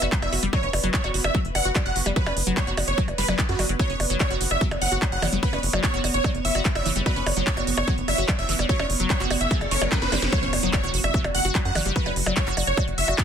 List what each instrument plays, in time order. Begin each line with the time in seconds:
Already playing: ambient pad B3 B4
0.02 analog synth bass F#1, synth arpeggio sound F#4, closed hi-hat, percussion blips
0.12 synth arpeggio sound F#3, kick, clap, closed hi-hat
0.22 analog synth bass F#1, supersaw synth E5, closed hi-hat, percussion blips
0.33 analog synth bass F#1, synth arpeggio sound F#4, open hi-hat
0.43 analog synth bass F#1, synth arpeggio sound G3, closed hi-hat
0.53 synth arpeggio sound F#3, supersaw synth C#5, kick, closed hi-hat, percussion blips
0.63 analog synth bass F#1, synth arpeggio sound C#4, closed hi-hat
0.73 analog synth bass F#1, open hi-hat, percussion blips
0.84 analog synth bass F#1, synth arpeggio sound F#3, closed hi-hat
0.94 supersaw synth C#5, kick, clap, closed hi-hat
1.04 analog synth bass F#1, synth arpeggio sound F#4, closed hi-hat, percussion blips
1.14 analog synth bass F#1, synth arpeggio sound F#4, open hi-hat
1.24 analog synth bass F#1, supersaw synth E5, closed hi-hat, percussion blips
1.35 synth arpeggio sound F#3, kick, closed hi-hat
1.45 analog synth bass F#1, closed hi-hat
1.55 analog synth bass F#1, supersaw synth F#5, open hi-hat, percussion blips
1.65 analog synth bass F#1, synth arpeggio sound F#4, closed hi-hat
1.75 synth arpeggio sound F#3, kick, clap, closed hi-hat, percussion blips
1.86 analog synth bass F#1, supersaw synth F#5, closed hi-hat
1.96 analog synth bass F#1, synth arpeggio sound F#4, open hi-hat
2.06 analog synth bass F#1, synth arpeggio sound G3, closed hi-hat, percussion blips
2.16 synth arpeggio sound F#3, supersaw synth B4, kick, closed hi-hat
2.26 analog synth bass F#1, synth arpeggio sound C#4, closed hi-hat, percussion blips
2.37 analog synth bass F#1, open hi-hat
2.47 analog synth bass F#1, synth arpeggio sound F#3, closed hi-hat
2.57 synth arpeggio sound F#3, supersaw synth C#5, kick, clap, closed hi-hat, percussion blips
2.67 analog synth bass F#1, synth arpeggio sound F#4, closed hi-hat
2.77 analog synth bass F#1, synth arpeggio sound F#4, open hi-hat, percussion blips
2.88 analog synth bass F#1, supersaw synth C#5, closed hi-hat
2.98 synth arpeggio sound F#3, kick, closed hi-hat
3.08 analog synth bass F#1, closed hi-hat, percussion blips
3.18 analog synth bass F#1, synth arpeggio sound G3, supersaw synth B4, open hi-hat
3.28 analog synth bass F#1, synth arpeggio sound F#3, closed hi-hat, percussion blips
3.39 kick, clap, closed hi-hat
3.49 analog synth bass F#2, supersaw synth F#4, closed hi-hat
3.59 analog synth bass G1, synth arpeggio sound F#3, open hi-hat, percussion blips
3.69 analog synth bass F#1, synth arpeggio sound F#3, closed hi-hat
3.79 synth arpeggio sound F#3, ambient pad C#5, supersaw synth C#5, kick, closed hi-hat
3.90 analog synth bass F#1, synth arpeggio sound C#4, closed hi-hat
4.00 analog synth bass F#1, open hi-hat, percussion blips
4.10 analog synth bass F#1, synth arpeggio sound F#3, closed hi-hat
4.20 synth arpeggio sound F#3, supersaw synth C#5, kick, clap, closed hi-hat, percussion blips
4.31 analog synth bass F#1, synth arpeggio sound F#4, closed hi-hat
4.41 analog synth bass F#1, synth arpeggio sound F#4, open hi-hat
4.51 analog synth bass F#1, supersaw synth E5, percussion blips
4.61 synth arpeggio sound F#3, kick, closed hi-hat
4.71 analog synth bass F#1, closed hi-hat, percussion blips
4.82 analog synth bass F#1, supersaw synth F#5, open hi-hat
4.92 analog synth bass F#1, synth arpeggio sound F#4, closed hi-hat
5.02 synth arpeggio sound F#3, kick, clap, closed hi-hat, percussion blips
5.12 analog synth bass F#1, supersaw synth F#5, closed hi-hat
5.22 analog synth bass F#1, synth arpeggio sound E3, open hi-hat, percussion blips
5.33 analog synth bass F#1, synth arpeggio sound G3, closed hi-hat
5.43 synth arpeggio sound F#3, supersaw synth B4, kick, closed hi-hat
5.53 analog synth bass F#1, synth arpeggio sound C#4, closed hi-hat, percussion blips
5.63 analog synth bass F#1, open hi-hat
5.73 analog synth bass F#1, synth arpeggio sound F#3, closed hi-hat, percussion blips
5.84 supersaw synth C#5, kick, clap, closed hi-hat
5.94 analog synth bass F#1, synth arpeggio sound F#4, closed hi-hat
6.04 analog synth bass F#1, synth arpeggio sound F#4, open hi-hat, percussion blips
6.14 analog synth bass F#1, supersaw synth C#5, closed hi-hat
6.24 synth arpeggio sound F#3, kick, closed hi-hat, percussion blips
6.35 analog synth bass F#1, closed hi-hat
6.45 analog synth bass F#1, supersaw synth E5, open hi-hat
6.55 analog synth bass F#1, synth arpeggio sound F#4, closed hi-hat, percussion blips
6.65 synth arpeggio sound F#3, kick, clap, closed hi-hat
6.75 analog synth bass F#1, supersaw synth E5, closed hi-hat, percussion blips
6.86 analog synth bass F#1, synth arpeggio sound E3, open hi-hat
6.96 analog synth bass F#1, synth arpeggio sound G3, closed hi-hat
7.06 synth arpeggio sound F#3, supersaw synth B4, kick, closed hi-hat, percussion blips, riser
7.16 analog synth bass F#1, synth arpeggio sound C#4, closed hi-hat
7.26 analog synth bass F#1, open hi-hat, percussion blips
7.37 analog synth bass F#1, synth arpeggio sound F#3, closed hi-hat
7.47 supersaw synth C#5, kick, clap, closed hi-hat
7.57 analog synth bass F#1, synth arpeggio sound F#4, closed hi-hat, percussion blips
7.67 analog synth bass F#1, synth arpeggio sound F#4, open hi-hat
7.77 analog synth bass F#1, supersaw synth C#5, closed hi-hat, percussion blips
7.88 synth arpeggio sound F#3, kick, closed hi-hat
7.98 analog synth bass F#1, closed hi-hat
8.08 analog synth bass F#1, supersaw synth E5, open hi-hat, percussion blips
8.18 analog synth bass F#1, synth arpeggio sound F#4, closed hi-hat
8.28 synth arpeggio sound F#3, kick, clap, closed hi-hat, percussion blips
8.39 analog synth bass F#1, supersaw synth E5, closed hi-hat
8.49 analog synth bass F#1, synth arpeggio sound E3, open hi-hat
8.59 analog synth bass F#1, synth arpeggio sound G3, closed hi-hat, percussion blips
8.69 synth arpeggio sound F#3, supersaw synth C#5, kick, closed hi-hat
8.79 analog synth bass F#1, synth arpeggio sound C#4, closed hi-hat, percussion blips
8.90 analog synth bass F#1, open hi-hat
9.00 analog synth bass F#1, synth arpeggio sound F#3, closed hi-hat
9.10 synth arpeggio sound F#3, supersaw synth C#5, kick, clap, closed hi-hat, percussion blips
9.20 analog synth bass F#1, synth arpeggio sound F#4, clap, closed hi-hat
9.30 analog synth bass F#1, synth arpeggio sound F#4, open hi-hat, percussion blips
9.41 analog synth bass F#1, supersaw synth E5, closed hi-hat
9.51 synth arpeggio sound F#3, kick, closed hi-hat
9.61 analog synth bass F#1, closed hi-hat, percussion blips
9.71 analog synth bass F#1, synth arpeggio sound E3, supersaw synth C#5, open hi-hat
9.82 analog synth bass F#1, synth arpeggio sound F#3, closed hi-hat, percussion blips
9.92 synth arpeggio sound F#3, kick, snare, clap, closed hi-hat
10.02 analog synth bass F#1, supersaw synth B4, snare, closed hi-hat
10.12 analog synth bass F#1, synth arpeggio sound G3, snare, open hi-hat, percussion blips
10.22 analog synth bass F#1, synth arpeggio sound G3, snare, closed hi-hat
10.33 synth arpeggio sound F#3, ambient pad F#3 F#4, supersaw synth C#5, kick, closed hi-hat, impact
10.43 analog synth bass F#1, synth arpeggio sound C#4, closed hi-hat
10.53 analog synth bass F#1, open hi-hat, percussion blips
10.63 analog synth bass F#1, synth arpeggio sound F#3, closed hi-hat
10.73 supersaw synth C#5, kick, clap, closed hi-hat, percussion blips
10.84 analog synth bass F#1, synth arpeggio sound F#4, closed hi-hat
10.94 analog synth bass F#1, synth arpeggio sound F#4, open hi-hat
11.04 analog synth bass F#1, supersaw synth E5, closed hi-hat, percussion blips
11.14 synth arpeggio sound F#3, kick, closed hi-hat
11.24 analog synth bass F#1, closed hi-hat, percussion blips
11.35 analog synth bass F#1, supersaw synth F#5, open hi-hat
11.45 analog synth bass F#1, synth arpeggio sound F#4, closed hi-hat
11.55 synth arpeggio sound F#3, kick, clap, closed hi-hat, percussion blips
11.65 analog synth bass F#2, supersaw synth F#5, closed hi-hat
11.75 analog synth bass G1, synth arpeggio sound E3, open hi-hat, percussion blips
11.86 analog synth bass F#1, synth arpeggio sound G3, closed hi-hat
11.96 synth arpeggio sound F#3, supersaw synth B4, kick, closed hi-hat
12.06 analog synth bass F#1, synth arpeggio sound C#4, closed hi-hat, percussion blips
12.16 analog synth bass F#1, open hi-hat
12.26 analog synth bass F#1, synth arpeggio sound F#3, percussion blips
12.37 supersaw synth C#5, kick, clap, closed hi-hat
12.47 analog synth bass F#1, synth arpeggio sound F#4, clap, closed hi-hat
12.57 analog synth bass F#1, synth arpeggio sound F#4, open hi-hat, percussion blips
12.67 analog synth bass F#1, supersaw synth C#5, closed hi-hat
12.77 synth arpeggio sound F#3, kick, closed hi-hat, percussion blips
12.88 analog synth bass F#1, closed hi-hat
12.98 analog synth bass F#1, supersaw synth E5, open hi-hat
13.08 analog synth bass F#1, synth arpeggio sound F#4, closed hi-hat, percussion blips
13.18 synth arpeggio sound F#3, kick, clap, closed hi-hat